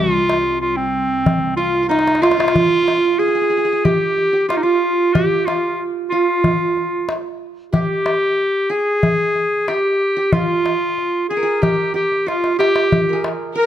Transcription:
Already playing: cello section C2, clarinet F4
0.29 darbuka tek
0.61 clarinet F4, darbuka ka
0.77 clarinet C4
1.26 darbuka dum
1.57 clarinet F4, qanun F4, darbuka ka
1.75 darbuka ka
1.83 qanun F4
1.89 qanun D#4, clarinet D#4, darbuka tek
1.99 darbuka ka
2.08 darbuka tek
2.15 darbuka ka
2.22 qanun F4, clarinet F4, darbuka tek
2.31 qanun F4, darbuka ka
2.37 qanun F4, darbuka tek
2.45 qanun F4, darbuka ka
2.53 qanun F4, darbuka dum
2.62 qanun F4
2.68 qanun F4
2.75 qanun F4
2.82 qanun F4
2.88 qanun F4, darbuka tek
2.97 qanun F4
3.05 qanun F4
3.19 clarinet G#4, qanun G#4
3.28 qanun G#4
3.35 qanun G#4
3.41 qanun G#4
3.50 qanun G#4
3.57 qanun G#4
3.65 qanun G#4
3.73 qanun G#4
3.85 clarinet G4, qanun G4, darbuka dum
4.18 darbuka ka
4.33 qanun G4
4.49 qanun F4, clarinet F4, darbuka tek
4.57 clarinet D#4
4.63 clarinet F4, qanun F4
5.14 clarinet G4, qanun G4, darbuka dum
5.46 clarinet F4, qanun F4, darbuka tek
6.10 clarinet F4, qanun F4
6.44 darbuka dum
6.77 darbuka ka
7.09 darbuka tek
7.73 qanun G4, clarinet G4, darbuka dum
8.06 darbuka tek
8.70 qanun G#4, clarinet G#4
9.03 darbuka dum
9.36 darbuka ka
9.68 clarinet G4, qanun G4, darbuka tek
10.17 qanun G4
10.33 clarinet F4, qanun F4, darbuka dum
10.66 darbuka tek
10.98 darbuka ka
11.30 clarinet G#4, qanun G#4
11.37 qanun A#4
11.43 qanun G#4
11.62 qanun G4, clarinet G4, darbuka dum
11.94 qanun G4, clarinet G4, darbuka ka
12.12 darbuka ka
12.26 qanun F4, clarinet F4, darbuka tek
12.44 darbuka ka
12.59 qanun G4, clarinet G4, darbuka tek
12.76 darbuka ka
12.92 darbuka dum
13.09 qanun G#4 A#4
13.24 darbuka tek
13.55 qanun A#4, violin section A#4, clarinet A#4

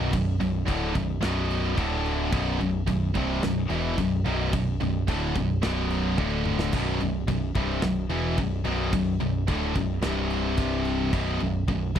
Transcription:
Already playing: picked electric bass B0, distorted electric guitar B1 F#2 B2
0.13 picked electric bass B0, distorted electric guitar B1 F#2, kick, crash
0.40 picked electric bass B0, distorted electric guitar B1 F#2, crash
0.67 picked electric bass D1, distorted electric guitar D2 A2 D3, kick, crash
0.95 picked electric bass B0, distorted electric guitar B1 F#2, kick, crash
1.21 picked electric bass B0, distorted electric guitar B1 F#2 B2, snare, crash
1.50 crash
1.76 picked electric bass D1, distorted electric guitar D2 A2 D3, kick, crash
2.06 crash
2.32 picked electric bass B0, distorted electric guitar B1 F#2 B2, kick, crash
2.59 picked electric bass B0, distorted electric guitar B1 F#2, crash
2.87 picked electric bass B0, distorted electric guitar B1 F#2, kick, crash
3.15 picked electric bass C1, distorted electric guitar C2 G2 C3, kick, crash
3.43 picked electric bass B0, distorted electric guitar B1 F#2, snare, crash
3.70 picked electric bass E1, distorted electric guitar E2 B2 E3, crash
3.98 picked electric bass B0, distorted electric guitar B1 F#2, kick, crash
4.26 picked electric bass B0, distorted electric guitar B1 F#2 B2, crash
4.53 picked electric bass B0, distorted electric guitar B1 F#2, kick, crash
4.80 picked electric bass B0, distorted electric guitar B1 F#2, crash
5.08 picked electric bass D1, distorted electric guitar D2 A2 D3, kick, crash
5.36 picked electric bass B0, distorted electric guitar B1 F#2, kick, crash
5.63 picked electric bass B0, distorted electric guitar B1 F#2 B2, snare, crash
5.90 crash
6.18 picked electric bass D1, distorted electric guitar D2 A2 D3, kick, high tom
6.45 mid tom
6.59 snare
6.72 picked electric bass B0, distorted electric guitar B1 F#2 B2, kick, crash
7.00 picked electric bass B0, distorted electric guitar B1 F#2, crash
7.28 picked electric bass B0, distorted electric guitar B1 F#2, kick, crash
7.55 picked electric bass C1, distorted electric guitar C2 G2 C3, kick, crash
7.82 picked electric bass B0, distorted electric guitar B1 F#2, snare, crash
8.10 picked electric bass E1, distorted electric guitar E2 B2 E3, crash
8.38 picked electric bass B0, distorted electric guitar B1 F#2, kick, crash
8.65 picked electric bass B0, distorted electric guitar B1 F#2 B2, crash
8.93 picked electric bass B0, distorted electric guitar B1 F#2, kick, crash
9.20 picked electric bass B0, distorted electric guitar B1 F#2, crash
9.48 picked electric bass D1, distorted electric guitar D2 A2 D3, kick, crash
9.75 picked electric bass B0, distorted electric guitar B1 F#2, kick, crash
10.03 picked electric bass C1, distorted electric guitar C2 G2 C3, snare, crash
10.30 crash
10.57 kick, crash
10.85 crash
11.13 picked electric bass B0, distorted electric guitar B1 F#2 B2, kick, crash
11.40 picked electric bass B0, distorted electric guitar B1 F#2, crash
11.68 picked electric bass B0, distorted electric guitar B1 F#2, kick, crash
11.95 picked electric bass C1, distorted electric guitar C2 G2, kick, crash

